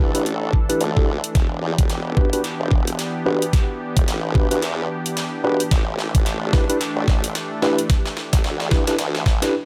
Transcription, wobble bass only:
0.00 0.12 D2 loud
0.15 0.51 A1 loud
0.81 1.21 D2 loud
1.35 1.61 E1 medium
1.62 1.76 E2 medium
1.78 2.30 E1 loud
2.60 2.97 E1 loud
3.26 3.39 G1 loud
3.97 4.06 E1 loud
4.07 4.48 A1 loud
4.51 4.88 E2 loud
5.44 5.58 E1 loud
5.71 5.97 A1 medium
5.98 6.12 A1 medium
6.15 6.67 A1 loud
6.96 7.33 A1 medium
7.62 7.76 D2 loud
8.33 8.42 A1 loud
8.44 8.85 D2 loud
8.88 8.97 A1 loud
8.99 9.24 D2 medium
9.26 9.53 A1 loud

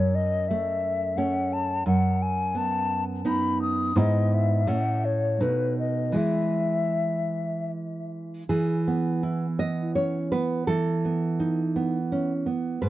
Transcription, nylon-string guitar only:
0.00 1.83 F#2 medium
0.50 1.17 A3 soft
1.18 1.83 A3 soft
1.18 1.83 C#4 soft
1.86 3.93 F#2 medium
2.55 3.24 B3 soft
3.25 3.92 B3 soft
3.25 3.93 D#4 soft
3.96 4.65 G#2 medium
3.96 4.63 B3 soft
3.96 4.63 E4 soft
4.67 5.38 A2 medium
4.67 5.37 A3 soft
4.67 5.37 C#4 soft
5.40 6.15 B2 soft
5.40 6.13 A3 soft
5.40 6.14 D#4 soft
6.12 8.42 E3 soft
6.12 8.43 G#3 soft
6.12 8.44 E4 soft
8.49 10.63 E3 soft
8.49 9.55 G#4 medium
8.88 9.45 B3 soft
9.23 9.81 E4 soft
9.59 10.17 B3 soft
9.59 9.94 D#5 medium
9.95 10.31 C#4 soft
9.95 10.30 C#5 medium
10.32 10.67 B3 soft
10.32 10.66 B4 medium
10.67 12.77 E3 soft
10.67 12.42 A4 medium
11.05 11.62 B3 soft
11.40 11.97 D#4 soft
11.76 12.32 B3 soft
12.12 12.46 C#4 soft
12.46 12.80 B3 soft
12.82 12.89 G#2 soft
12.82 12.89 B4 medium

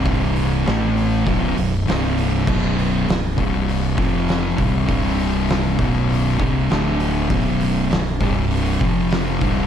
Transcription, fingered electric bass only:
0.00 0.62 C1 loud
0.67 1.23 A1 loud
1.27 1.55 B0 medium
1.58 1.85 B0 medium
1.89 2.44 C1 loud
2.47 3.04 B0 medium
3.08 3.36 B0 medium
3.38 3.94 C1 loud
3.99 4.55 F1 loud
4.58 4.87 C1 loud
4.89 5.76 C1 medium
5.79 6.36 B0 loud
6.40 6.68 C1 loud
6.71 7.27 D1 loud
7.31 7.87 B0 loud
7.91 8.19 B0 medium
8.21 8.78 C1 loud
8.81 9.38 F1 loud
9.42 9.67 C1 loud

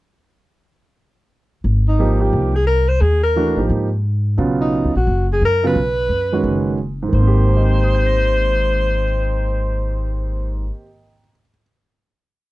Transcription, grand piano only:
1.99 2.50 F3 medium
1.99 2.51 A#3 medium
1.99 2.51 D#4 soft
1.99 2.51 G4 medium
3.36 3.55 E3 medium
3.36 3.55 A3 medium
3.36 3.56 D4 medium
3.36 3.56 F#4 medium
3.57 3.87 F3 medium
3.57 3.87 A#3 soft
3.57 3.87 D#4 soft
3.57 3.88 G4 medium
4.38 4.90 C#3 medium
4.38 4.90 F#3 medium
4.38 4.90 B3 medium
4.38 4.90 F4 medium
5.63 5.75 C#3 medium
5.63 5.75 F#3 medium
5.63 5.75 B3 medium
5.63 5.75 F4 medium
6.32 6.77 D#3 medium
6.32 6.77 G#3 medium
6.32 6.77 C#4 medium
6.32 6.77 F#4 medium
7.02 10.62 G#2 medium
7.09 10.69 D#3 medium
7.15 10.75 A#3 medium
7.21 10.81 C4 medium
7.27 10.87 G4 medium
7.49 11.05 A#4 soft
7.57 11.13 D#5 soft
7.64 11.20 G5 soft
7.74 11.30 A#5 soft
7.84 11.40 D#6 soft
7.94 11.50 G6 soft
8.06 11.62 A#6 soft

